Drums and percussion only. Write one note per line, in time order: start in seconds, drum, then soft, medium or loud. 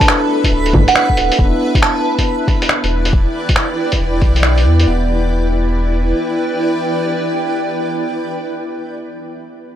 0.01 kick loud
0.01 closed hi-hat medium
0.08 finger snap loud
0.44 kick medium
0.44 closed hi-hat medium
0.66 closed hi-hat soft
0.73 kick loud
0.73 low bongo medium
0.88 closed hi-hat medium
0.96 finger snap loud
1.10 kick medium
1.17 closed hi-hat soft
1.32 closed hi-hat medium
1.39 kick loud
1.75 kick loud
1.75 closed hi-hat medium
1.83 finger snap loud
2.19 kick medium
2.19 closed hi-hat medium
2.48 kick medium
2.48 closed hi-hat soft
2.62 closed hi-hat medium
2.69 finger snap loud
2.84 closed hi-hat soft
3.05 closed hi-hat medium
3.13 kick loud
3.49 kick loud
3.49 closed hi-hat medium
3.56 finger snap loud
3.92 kick medium
3.92 closed hi-hat medium
4.22 kick loud
4.22 closed hi-hat soft
4.36 closed hi-hat soft
4.43 finger snap loud
4.58 closed hi-hat soft
4.80 closed hi-hat medium